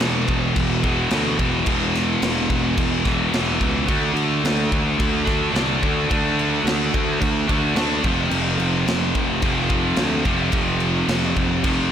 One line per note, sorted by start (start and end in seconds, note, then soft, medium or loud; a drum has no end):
0.00 0.24 E1 medium
0.00 0.82 E2 medium
0.00 0.82 B2 loud
0.00 0.82 E3 loud
0.00 snare loud
0.00 crash medium
0.28 0.52 E1 medium
0.28 kick medium
0.28 crash medium
0.56 1.05 E1 medium
0.56 kick loud
0.56 crash medium
0.83 1.09 E2 medium
0.83 1.10 B2 medium
0.83 1.09 E3 medium
0.83 kick medium
0.83 crash medium
1.11 1.36 D2 medium
1.11 1.64 E2 medium
1.11 1.65 B2 medium
1.11 1.66 E3 medium
1.11 snare loud
1.11 crash medium
1.39 1.63 E1 medium
1.39 kick medium
1.39 crash medium
1.65 2.15 E1 loud
1.65 3.03 E2 medium
1.65 3.04 B2 loud
1.65 3.03 E3 loud
1.65 kick loud
1.65 crash medium
1.95 snare soft
1.95 crash medium
2.22 2.47 E1 medium
2.22 snare loud
2.22 crash loud
2.50 2.74 E1 medium
2.50 kick medium
2.50 crash medium
2.77 3.02 E1 medium
2.77 kick loud
2.77 crash medium
3.04 3.30 E1 loud
3.04 3.31 E2 medium
3.04 3.31 B2 medium
3.04 3.31 E3 medium
3.04 kick medium
3.04 snare soft
3.04 crash medium
3.32 3.57 E1 loud
3.32 3.86 E2 medium
3.32 3.87 B2 medium
3.32 3.88 E3 medium
3.32 snare loud
3.32 crash medium
3.60 3.85 C#2 loud
3.60 kick medium
3.60 crash medium
3.88 4.13 D2 loud
3.88 5.25 D3 loud
3.88 5.26 A3 loud
3.88 5.23 D4 loud
3.88 kick loud
3.88 crash medium
4.14 4.39 D2 loud
4.14 crash medium
4.44 4.68 D2 medium
4.44 snare loud
4.44 crash medium
4.72 4.96 D2 medium
4.72 kick medium
4.72 crash medium
4.99 5.48 D2 medium
4.99 kick loud
4.99 crash medium
5.25 5.51 D3 medium
5.25 5.54 A3 medium
5.25 5.52 D4 medium
5.25 kick medium
5.25 snare soft
5.25 crash medium
5.52 5.78 C2 medium
5.52 6.07 D3 medium
5.52 6.09 A3 medium
5.52 6.09 D4 medium
5.52 crash medium
5.56 snare loud
5.83 6.07 D2 loud
5.83 kick medium
5.83 crash medium
6.08 6.59 D2 loud
6.08 7.46 D3 loud
6.08 7.49 A3 medium
6.08 7.47 D4 loud
6.08 kick loud
6.08 crash medium
6.39 crash medium
6.64 6.89 D2 medium
6.64 snare loud
6.64 crash loud
6.94 7.18 D2 medium
6.94 kick medium
6.94 crash medium
7.21 7.45 D2 medium
7.21 kick loud
7.21 crash medium
7.48 7.73 D2 loud
7.48 7.75 D3 medium
7.48 7.77 A3 medium
7.48 7.75 D4 medium
7.48 kick medium
7.48 crash medium
7.76 8.00 D2 medium
7.76 8.02 D3 medium
7.76 8.07 A3 medium
7.76 8.03 D4 medium
7.76 snare loud
7.76 crash medium
8.04 8.28 F1 medium
8.04 9.42 F2 medium
8.04 9.42 C3 medium
8.04 9.43 F3 loud
8.04 kick loud
8.04 crash medium
8.31 8.56 F1 loud
8.31 crash medium
8.58 8.83 F1 medium
8.58 crash medium
8.87 9.11 F1 medium
8.87 snare loud
8.87 crash medium
9.15 9.40 F1 medium
9.15 kick medium
9.15 crash medium
9.42 9.91 F1 medium
9.42 9.69 F2 medium
9.42 9.70 C3 medium
9.42 9.69 F3 medium
9.42 kick loud
9.42 crash medium
9.69 10.24 F2 medium
9.69 10.25 C3 medium
9.69 10.24 F3 medium
9.69 kick medium
9.69 crash medium
9.96 10.23 D2 loud
9.96 snare loud
9.96 crash medium
10.25 10.50 F1 loud
10.25 11.62 F2 medium
10.25 11.63 C3 loud
10.25 11.64 F3 medium
10.25 kick medium
10.25 crash medium
10.52 11.02 F1 loud
10.52 kick loud
10.52 crash medium
10.80 crash medium
11.08 11.33 F1 medium
11.08 snare loud
11.08 crash medium
11.36 11.61 F1 medium
11.36 kick medium
11.36 crash medium
11.64 11.89 F1 medium
11.64 11.90 F2 medium
11.64 11.91 C3 medium
11.64 11.90 F3 loud
11.64 kick loud
11.64 crash loud